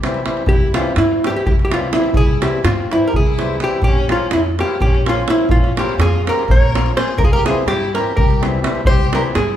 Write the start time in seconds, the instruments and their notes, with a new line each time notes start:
Already playing: upright bass C2, violin G4
0.02 accordion E3 G3 C4 E4, davul high
0.14 davul high
0.23 accordion E3 G3 C4 E4, davul high
0.37 davul high
0.46 upright bass C2, violin E4, hollow-body jazz guitar G4, davul low
0.73 accordion C3 E3 G3 C4 E4, violin C#4, hollow-body jazz guitar F4, davul high
0.96 upright bass G2, violin C4, hollow-body jazz guitar E4, davul high
1.22 accordion C3 E3 G3 C4 E4, violin E4, davul high
1.27 violin E4, hollow-body jazz guitar G4
1.35 violin E4, hollow-body jazz guitar G4
1.45 upright bass C2, violin E4, hollow-body jazz guitar G4, davul low
1.59 davul high
1.65 violin E4, hollow-body jazz guitar G4
1.69 accordion C3 E3 G3 C4 E4, violin C#4, davul high
1.74 hollow-body jazz guitar F4
1.91 accordion C3 E3 G3 C4 E4, hollow-body jazz guitar E4, davul high
1.95 violin C4
2.04 davul high
2.14 upright bass C2, violin E4, hollow-body jazz guitar G#4, davul low
2.41 accordion C3 E3 G3 C4 E4, violin E4, hollow-body jazz guitar G4, davul high
2.64 upright bass G2, violin C4, hollow-body jazz guitar F4, davul high
2.91 accordion C3 E3 G3 C4 E4, violin C4, hollow-body jazz guitar E4, davul high
3.07 violin G4, hollow-body jazz guitar A#4
3.13 upright bass C2, violin E4, hollow-body jazz guitar G#4, davul low
3.27 davul high
3.37 accordion C3 E3 G3 C4 E4, davul high
3.60 accordion C3 E3 G3 C4 E4, violin E4, hollow-body jazz guitar G4, davul high
3.71 davul high
3.82 upright bass A#1, violin C#4, hollow-body jazz guitar G4, davul low
4.07 accordion C#3 F3 A#3 C#4 F4, davul high
4.12 violin C#4, hollow-body jazz guitar F4
4.31 upright bass F2, hollow-body jazz guitar E4, davul high
4.35 violin C#4
4.57 accordion C#3 F3 A#3 C#4 F4, hollow-body jazz guitar G4, davul high
4.62 violin E4
4.80 upright bass A#1, violin C#4, hollow-body jazz guitar G4, davul low
4.94 davul high
5.05 accordion C#3 F3 A#3 C#4 F4, violin C#4, davul high
5.09 hollow-body jazz guitar F4
5.26 accordion C#3 F3 A#3 C#4 F4, violin C4, hollow-body jazz guitar E4, davul high
5.38 davul high
5.49 upright bass A#1, violin C#4, hollow-body jazz guitar F4, davul low
5.64 davul high
5.75 accordion C#3 F3 A#3 C#4 F4, violin E4, hollow-body jazz guitar G4, davul high
5.89 davul high
5.98 upright bass F2, violin F4, hollow-body jazz guitar G#4, davul high
6.13 davul high
6.25 accordion C#3 F3 A#3 C#4 F4, violin G4, hollow-body jazz guitar A#4, davul high
6.39 davul high
6.48 upright bass A#1, violin A#4, hollow-body jazz guitar C#5, davul low
6.63 davul high
6.73 accordion C#3 F3 A#3 C#4 F4, davul high
6.86 davul high
6.95 accordion C#3 F3 A#3 C#4 F4, violin G#4, hollow-body jazz guitar C5, davul high
7.08 davul high
7.17 upright bass C2, violin G4, hollow-body jazz guitar A#4, davul low
7.24 violin F4, hollow-body jazz guitar G#4
7.33 violin G4, hollow-body jazz guitar A#4
7.44 accordion C3 E3 G3 C4 E4, hollow-body jazz guitar G#4, davul high
7.48 violin F4
7.66 upright bass G2, violin E4, hollow-body jazz guitar G4, davul high
7.93 accordion C3 E3 G3 C4 E4, violin G4, hollow-body jazz guitar A#4, davul high
8.17 upright bass C2, violin G4, hollow-body jazz guitar A#4, davul low
8.30 davul high
8.41 accordion C3 E3 G3 C4 E4, davul high
8.62 accordion C3 E3 G3 C4 E4, davul high
8.75 davul high
8.85 upright bass C2, violin G4, hollow-body jazz guitar C5, davul low
9.12 accordion C3 E3 G3 C4 E4, violin G4, hollow-body jazz guitar A#4, davul high
9.35 upright bass G2, violin E4, hollow-body jazz guitar G#4, davul high